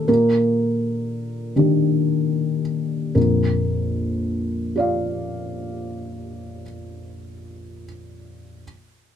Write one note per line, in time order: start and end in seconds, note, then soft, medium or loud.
0.00 0.11 D#3 soft
0.00 0.11 D4 soft
0.00 0.10 A4 medium
0.00 0.08 A#4 medium
0.08 1.52 A#2 soft
0.08 2.62 A#4 medium
1.56 3.11 D#3 soft
1.56 3.12 D4 soft
1.56 3.12 G4 soft
3.15 6.62 A#1 soft
3.15 6.62 F2 soft
3.15 6.62 A#4 soft
4.76 7.84 F4 soft
4.76 7.85 D5 soft
4.76 7.86 F5 soft